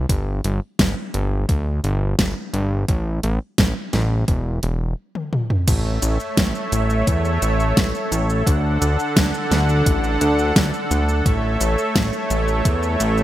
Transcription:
0.09 G1, kick, closed hi-hat
0.44 G1, closed hi-hat
0.79 G1, kick, snare, closed hi-hat
1.14 G1, closed hi-hat
1.49 D2, kick, closed hi-hat
1.84 G1, closed hi-hat
2.19 G1, kick, snare, closed hi-hat
2.54 G1, closed hi-hat
2.88 A1, kick, closed hi-hat
3.23 A1, closed hi-hat
3.58 A1, kick, snare, closed hi-hat
3.93 A1, snare, closed hi-hat
4.28 E1, kick, closed hi-hat
4.63 E1, closed hi-hat
5.15 high tom
5.33 mid tom
5.50 mid tom
5.68 A1 A3 A4 C#5 E5, kick, closed hi-hat, crash, shaker
6.02 A1, closed hi-hat, shaker
6.20 shaker
6.37 A1, kick, snare, closed hi-hat, shaker
6.55 shaker
6.72 A1, closed hi-hat, shaker
6.90 shaker
7.07 E2, kick, closed hi-hat, shaker
7.25 shaker
7.42 A1, closed hi-hat, shaker
7.60 shaker
7.77 A1, kick, snare, closed hi-hat, shaker
7.95 shaker
8.12 A1, closed hi-hat, shaker
8.30 shaker
8.46 D2 D3 D4 F#5, kick, closed hi-hat, shaker
8.82 D2, closed hi-hat, shaker
8.99 shaker
9.16 D2, kick, snare, closed hi-hat, shaker
9.34 shaker
9.51 D2, snare, closed hi-hat, shaker
9.69 shaker
9.86 A1, kick, closed hi-hat, shaker
10.04 shaker
10.21 D2, closed hi-hat, shaker
10.39 shaker
10.56 D2, kick, snare, closed hi-hat, shaker
10.74 shaker
10.91 D2, closed hi-hat, shaker
11.09 shaker
11.25 A1 A3 C#5 E5, kick, closed hi-hat, shaker
11.61 A1, closed hi-hat, shaker
11.78 shaker
11.95 A1, kick, snare, closed hi-hat, shaker
12.13 shaker
12.30 A1, closed hi-hat, shaker
12.48 shaker
12.65 E2, kick, closed hi-hat, shaker
12.83 shaker
13.00 A1, closed hi-hat, shaker
13.18 shaker

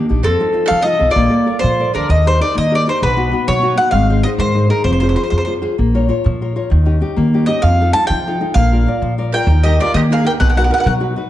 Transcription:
0.09 A#1 D4 D#4 G4
0.23 F2 F3 C4 A4
0.40 D#4 F4 A4
0.53 D#4 F4 A4
0.66 C3 A4 F5
0.71 F3
0.81 D#4 F4 A4 D#5
0.86 A4
0.99 B1 D#4 F4 A4
1.11 F4 D5
1.16 A#1 A#3
1.30 A4 A#4 D5
1.46 A4 A#4 D5
1.59 F3 F4 C5
1.64 A#2
1.79 A4 A#4 D5
1.93 D2 D4 A4 A#4 D5
2.09 D#2 D#3 D#5
2.26 D#4 G4 A#4 C5
2.41 D#4 G4 A#4 D5
2.55 D#3 A#3 D#5
2.71 D#4 G4 A#4 D5
2.87 D#4 G4 A#4 C5
3.02 B1 B2 B4
3.17 B3 D#4 F#4
3.32 B3 D#4 F#4
3.47 B2 F#3 C#5
3.62 B3 D#4 F#4
3.77 B3 D#4 F#4 F#5
3.91 G#1 G#3 F5
4.10 D#4 G#4 C5
4.23 D#4 G#4 C5 D#5
4.38 G#2 D#3 C5
4.55 D#4 G#4 C5
4.69 D#4 G#4 A#4 C5
4.84 F1 F3 C5
4.92 C5
5.00 F4 G#4 C5
5.09 C5
5.16 F4 G#4 C5
5.23 C5
5.30 F2 C3 C5
5.38 C5
5.45 F4 G#4 C5
5.62 F4 G#4 C5
5.78 A#1 A#3
5.94 F4 A#4 C#5
6.09 F4 A#4 C#5
6.24 A#2 F3
6.42 F4 A#4 C#5
6.56 F4 A#4 C#5
6.70 D#2 D#3
6.85 C#4 D#4 G4
7.00 C#4 D#4 G4
7.16 D#3 A#3
7.34 C#4 D#4 G4
7.46 C#4 D#4 G4 D#5
7.62 F2 F3 F5
7.80 D#4 F4 A4
7.93 D#4 F4 A4 A5
8.07 C3 F3 G5
8.27 D#4 F4 A4
8.41 D#4 F4 A4
8.54 A#1 A#3 F5
8.73 F4 A#4 D5
8.86 F4 A#4 D5
9.02 A#2 F3
9.18 F4 A#4 D5
9.32 F4 A#4 D5 G5
9.47 D#2 D#3
9.63 D#4 G4 A#4 D#5
9.80 D#4 F4 G4 A#4 D5
9.94 D#3 A#3 G4 D#5
10.11 D#4 G4 G#4 A#4 F5
10.24 D#4 G4 A#4 G5
10.40 B1 B2 B4 F#5
10.49 A#4 F#5
10.56 D#4 F#4 A#4 B4 F#5
10.64 A#4 F#5
10.70 D#4 F#4 A#4 B4 F#5
10.78 A#4 F#5
10.84 B2 F#3 A#4 F#5
11.00 D#4 F#4 B4
11.16 D#4 F#4 B4

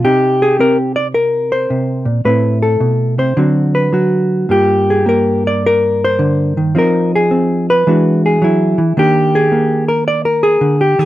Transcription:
0.04 C3 C4 D#4 G4
0.42 G#4
0.59 C4 A#4
0.96 D5
1.14 A#4
1.52 C5
1.70 C3
2.05 A#2
2.25 A2 A3 C4 E4 B4
2.62 A4
2.80 B2
3.18 C3 C5
3.37 D3 F#3 C4 F#4
3.75 B4
3.93 F#3 F#4
4.49 G2 A#3 F4 G4
4.90 G#4
5.06 A#3 A#4
5.47 D5
5.66 A#4
6.04 C5
6.19 D3
6.57 D#3
6.75 F3 C4 D#4 A#4
7.15 G#4
7.31 C4
7.70 B4
7.87 E3 G#3 D4 F#4
8.26 G#4
8.42 F#3 E4
8.78 E3
8.97 D#3 A#3 D4 G4
9.35 G#4
9.52 A#3
9.88 A#4
10.08 D5
10.25 A#4
10.43 G#4
10.61 D3
10.81 G4
10.99 D#3 G#4

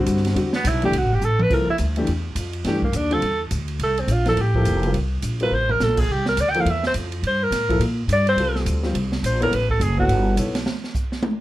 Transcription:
Already playing: D3 G3 C4 F#4
0.06 G2, hi-hat pedal, ride
0.17 snare
0.25 snare, ride
0.35 E2 D3 G3 C4 F#4, ride
0.53 B3, snare
0.64 B1 E4, hi-hat pedal, ride
0.82 E3 A3 D4 G4, ride
0.92 C2, ride
0.97 F#4
1.02 A1
1.12 G1 G4
1.22 A1 A4, hi-hat pedal
1.39 B4, mid tom
1.50 C2 F3 A#3 E4 A4 A#4, kick, crash
1.68 E4, muted upright bass stroke
1.78 D2, hi-hat pedal, ride
1.96 E3 A3 D4 G4, ride
2.07 E2, ride
2.35 F2, hi-hat pedal, ride
2.53 ride
2.64 G2 E3 A3 D4 G4, snare, ride
2.82 A#3, kick
2.92 D#2 D4, hi-hat pedal, ride
3.11 D3 G3 C4 F4 A4, ride
3.22 E2, ride
3.51 D2, hi-hat pedal, ride
3.68 ride
3.79 C2 A4, ride
3.97 C4, ride
4.07 A#1, hi-hat pedal, ride
4.12 F4
4.26 F3 A#3 E4 A4, snare, ride
4.37 A1, ride
4.42 G4
4.54 F3 A#3 E4 A4, kick
4.65 F1, hi-hat pedal, ride
4.83 G3 C4 F4 A#4, ride
4.94 C2, ride
5.22 A#1, hi-hat pedal, ride
5.40 G3 C4 F4 A#4 B4, ride
5.51 A1 C5
5.69 A#4, floor tom
5.80 A#1 A4, snare, hi-hat pedal
5.97 G#4, kick, crash
6.09 C2 G4
6.26 A#4, snare
6.37 D2 D5, hi-hat pedal, ride
6.50 G5
6.54 F3 A#3 E4 A4, ride
6.61 F5
6.65 E2, ride
6.70 E5
6.83 C5, snare
6.94 F2, hi-hat pedal, ride
7.12 ride
7.22 G2, ride
7.27 C5
7.43 A#4
7.51 A2, snare, hi-hat pedal, ride
7.69 F3 A#3 E4 A4, kick, ride
7.79 A#2, ride
8.08 G2, hi-hat pedal, ride
8.12 D5
8.27 C5, ride
8.36 C2 G3 C4 F4 A4, ride
8.56 snare
8.66 D2, hi-hat pedal, ride
8.83 G3 C4 F4 C5, snare
8.94 C2, ride
9.12 snare
9.23 A#1 C5, hi-hat pedal, ride
9.40 B3 E4 A4 A#4 C#5, ride
9.51 A1 B4, ride
9.70 A4, kick
9.80 F#1 G#4, hi-hat pedal, ride
9.98 B3 E4 F#4 A4 C#5, kick
10.08 G1, ride
10.37 B1 B3 E4 A4 C#5, hi-hat pedal, ride
10.55 snare, ride
10.66 snare
10.84 snare
10.95 kick, hi-hat pedal
11.12 snare
11.23 high tom

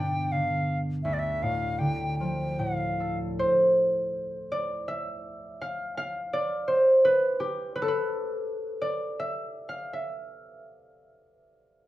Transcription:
Already playing: G2 D3 B3 G5
0.00 D4
0.32 D3 F5
1.03 D2 E5
1.13 D5
1.19 E5
1.43 A2 F5
1.79 D3 G5
2.18 F3 G5
2.59 A2 F5
3.00 A4
3.39 C5
4.52 D5
4.88 E5
5.61 F5
5.97 F5
6.33 D5
6.68 C5
7.05 B4
7.40 G4
7.76 B4
7.82 A4
7.88 B4
8.82 D5
9.20 E5
9.69 F5
9.93 E5

